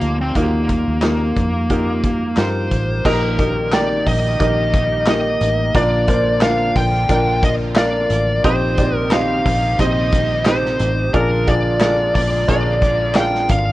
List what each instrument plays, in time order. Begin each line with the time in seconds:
Already playing: analog synth pad A#2 F3 G3 F4, lead electric guitar A#3, upright piano D#4 F4 G4 A4 A#4
0.01 fingered electric bass D2, closed hi-hat
0.21 lead electric guitar C4
0.35 fingered electric bass D#2, upright piano D#3 D#4 F4 F#4 A#4, analog synth pad A#3, lead electric guitar A#3, kick, closed hi-hat
0.42 upright piano G4
0.69 kick, closed hi-hat
0.88 fingered electric bass D#2
1.02 upright piano D#4 F4 G4 A#4, snare, clap, closed hi-hat
1.36 fingered electric bass F2, kick, closed hi-hat
1.70 upright piano D#4 F4 G4 A#4, kick, closed hi-hat
2.04 kick, closed hi-hat
2.37 fingered electric bass G2, upright piano D#4 F4 G4 A#4, lead electric guitar C5, snare, clap, closed hi-hat
2.71 fingered electric bass A1, kick, closed hi-hat
3.05 fingered electric bass A#1, upright piano A#2 A#3 D#4 G4 A#4 D#5, analog synth pad D#3 G3 A#3 D#4 G4, lead electric guitar A#4, kick, crash
3.39 upright piano A#3 D#4 G4 A#4 D#5, kick, hi-hat pedal, open hi-hat
3.72 upright piano A#3 D#4 G4 A#4 G5, lead electric guitar D5, snare, clap, hi-hat pedal, open hi-hat
4.06 fingered electric bass A#1, lead electric guitar D#5, kick, hi-hat pedal, open hi-hat
4.40 fingered electric bass A#1, upright piano A#3 D#4 G4 A#4 D#5, kick, hi-hat pedal, open hi-hat
4.73 kick, hi-hat pedal, open hi-hat
5.06 upright piano A#3 D#4 G4 A#4 D#5, lead electric guitar D#5, snare, clap, hi-hat pedal, open hi-hat
5.41 fingered electric bass A1, hi-hat pedal, open hi-hat
5.74 fingered electric bass A#1, upright piano A#2 A#3 D4 F4 A#4 D5, analog synth pad D3 F3 F4, lead electric guitar D5, kick, hi-hat pedal, open hi-hat
6.08 upright piano A#3 D4 F4 A#4 C5, kick, hi-hat pedal, open hi-hat
6.41 upright piano A#3 D4 F4 A#4 D5, lead electric guitar F5, snare, clap, hi-hat pedal, open hi-hat
6.76 fingered electric bass A#1, lead electric guitar G5, kick, hi-hat pedal, open hi-hat
7.09 fingered electric bass A#1, upright piano A#3 D4 F4 A#4 D5, kick, hi-hat pedal, open hi-hat
7.43 lead electric guitar D#5, kick, hi-hat pedal, open hi-hat
7.76 upright piano A#3 D4 F4 A#4 F5, lead electric guitar D5, snare, clap, hi-hat pedal, open hi-hat
8.10 fingered electric bass A1, hi-hat pedal, open hi-hat
8.44 fingered electric bass A#1, upright piano A#2 C4 D#4 G4 C5 D#5, analog synth pad C3 D#3 G3 D#4 G4, lead electric guitar C5, kick, hi-hat pedal, open hi-hat
8.78 upright piano C4 D#4 G4 C5 D5, kick, hi-hat pedal, open hi-hat
8.98 lead electric guitar A#4
9.11 upright piano C4 D#4 G4 C5 D#5, lead electric guitar F5, snare, clap, hi-hat pedal, open hi-hat
9.45 fingered electric bass A#1, kick, hi-hat pedal, open hi-hat
9.79 fingered electric bass A#1, upright piano C4 D#4 G4 C5 D#5, lead electric guitar D#5, kick, hi-hat pedal, open hi-hat
10.12 kick, hi-hat pedal, open hi-hat
10.46 upright piano C4 D#4 G4 C5 D#5, lead electric guitar C5, snare, clap, hi-hat pedal, open hi-hat
10.66 snare
10.80 fingered electric bass A1, hi-hat pedal, open hi-hat
11.14 fingered electric bass A#1, upright piano A#2 D4 F4 G#4 A#4 D5, analog synth pad D3 F3 G#3 A#3 F4, lead electric guitar A#4, kick, hi-hat pedal, open hi-hat
11.47 upright piano D4 F4 G#4 A#4 D5, lead electric guitar D5, kick, hi-hat pedal, open hi-hat
11.80 upright piano D4 F4 G#4 A#4 D5, snare, clap, hi-hat pedal, open hi-hat
12.15 fingered electric bass A#1, lead electric guitar D5, kick, hi-hat pedal, open hi-hat
12.48 fingered electric bass A#1, upright piano D4 F4 G#4 A#4 C#5, lead electric guitar D5, kick, hi-hat pedal, open hi-hat
12.55 upright piano D5
12.82 kick, hi-hat pedal, open hi-hat
13.15 upright piano D4 F4 G#4 A#4 F5, lead electric guitar G5, snare, clap, hi-hat pedal, open hi-hat
13.35 snare
13.49 fingered electric bass G#1, lead electric guitar F5, kick, hi-hat pedal, open hi-hat